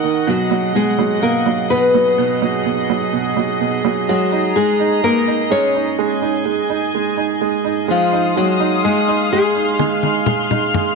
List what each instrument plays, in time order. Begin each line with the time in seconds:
Already playing: felt piano D#3 A#3, string section A#4 D#5 F#5 C#6
0.03 felt piano D#3
0.26 felt piano B2, nylon-string guitar F#3 F#4, string section G#4
0.51 felt piano F#3
0.75 felt piano B2, nylon-string guitar G#3 G#4
0.98 felt piano F#3
1.22 felt piano B2, nylon-string guitar A#3 A#4
1.46 felt piano F#3
1.70 felt piano B2, nylon-string guitar B3 B4
1.95 felt piano F#3
2.18 felt piano B2
2.42 felt piano F#3
2.66 felt piano B2
2.90 felt piano F#3
3.13 felt piano B2
3.37 felt piano F#3
3.61 felt piano B2
3.85 felt piano F#3
4.07 nylon-string guitar F#3 F#4, felt piano G#3, string section A#5
4.32 felt piano D#4
4.56 felt piano G#3, nylon-string guitar G#3 G#4
4.80 felt piano D#4
5.04 felt piano G#3, nylon-string guitar A#3 A#4
5.27 felt piano D#4
5.50 felt piano G#3, nylon-string guitar C#4 C#5
5.75 felt piano D#4
5.99 felt piano G#3, string section G#5
6.22 felt piano D#4
6.46 felt piano G#3
6.70 felt piano D#4
6.95 felt piano G#3
7.17 felt piano D#4
7.41 felt piano G#3
7.64 felt piano D#4
7.88 nylon-string guitar F3 F4, felt piano G#3, string section G#4 F5 C6 D#6
8.13 felt piano D#4
8.36 nylon-string guitar F#3 F#4, felt piano G#3
8.60 felt piano D#4
8.84 felt piano G#3, nylon-string guitar G#3 G#4
9.08 felt piano D#4
9.33 felt piano G#3, nylon-string guitar G#3 G#4
9.56 felt piano D#4
9.79 felt piano G#3, string section F6, high tom
10.03 felt piano D#4, high tom
10.26 felt piano G#3, mid tom
10.51 felt piano D#4, nylon-string guitar F#4, mid tom
10.74 felt piano G#3, mid tom